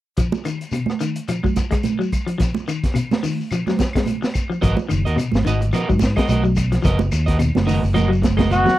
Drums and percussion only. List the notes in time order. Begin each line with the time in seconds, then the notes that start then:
0.17 kick, closed hi-hat, high conga, shekere
0.32 high conga, shekere
0.45 closed hi-hat, claves, shekere
0.61 closed hi-hat, shekere
0.72 closed hi-hat, high conga, claves, shekere
0.86 cross-stick, high conga, shekere
1.00 closed hi-hat, shekere
1.15 closed hi-hat, shekere
1.28 closed hi-hat, high conga, claves, shekere
1.43 kick, high conga, shekere
1.56 kick, cross-stick, closed hi-hat, high conga, shekere
1.71 kick, cross-stick, closed hi-hat, claves, shekere
1.83 closed hi-hat, high conga, shekere
2.01 shekere
2.12 kick, closed hi-hat, claves, shekere
2.28 closed hi-hat, shekere
2.40 kick, snare, closed hi-hat, high conga, shekere
2.54 high conga, shekere
2.68 closed hi-hat, claves, shekere
2.84 kick, snare, closed hi-hat, shekere
2.95 closed hi-hat, high conga, claves, shekere
3.11 snare, high conga, shekere
3.23 open hi-hat, high conga, shekere
3.41 shekere
3.51 closed hi-hat, high conga, claves, shekere
3.67 snare, high conga, shekere
3.79 kick, snare, closed hi-hat, high conga, shekere
3.93 kick, snare, closed hi-hat, claves, shekere
4.06 closed hi-hat, high conga, shekere
4.23 snare, shekere
4.34 kick, closed hi-hat, claves, shekere
4.51 shekere
4.62 kick, closed hi-hat, high conga, shekere
4.77 high conga, shekere
4.89 closed hi-hat, claves, shekere
5.06 closed hi-hat, shekere
5.18 closed hi-hat, high conga, claves, shekere
5.32 snare, high conga, shekere
5.45 closed hi-hat, high conga, shekere
5.61 closed hi-hat, shekere
5.73 closed hi-hat, high conga, claves, shekere
5.90 kick, shekere
5.99 kick, closed hi-hat, high conga, shekere
6.04 snare
6.16 kick, snare, closed hi-hat, claves, shekere
6.28 closed hi-hat, high conga, shekere
6.44 shekere
6.56 kick, closed hi-hat, claves, shekere
6.72 snare, closed hi-hat, shekere
6.84 kick, snare, closed hi-hat, high conga, shekere
6.99 high conga, shekere
7.12 closed hi-hat, claves, shekere
7.26 kick, snare, closed hi-hat, shekere
7.39 closed hi-hat, high conga, claves, shekere
7.55 snare, high conga, shekere
7.68 open hi-hat, high conga, shekere
7.84 shekere
7.94 closed hi-hat, high conga, claves, shekere
8.12 shekere
8.23 kick, snare, closed hi-hat, high conga, shekere
8.37 kick, snare, closed hi-hat, high conga, claves, shekere
8.50 closed hi-hat, low conga, shekere
8.66 snare, low conga, shekere